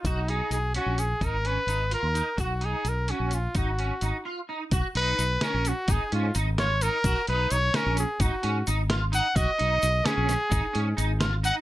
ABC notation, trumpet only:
X:1
M:5/8
L:1/8
Q:1/4=129
K:Blyd
V:1 name="Trumpet"
D G G F G | A B2 A2 | F G A F E | F3 z2 |
z B2 A F | G E z c A- | A B c A G | F2 z2 f |
d3 G2- | G3 z f |]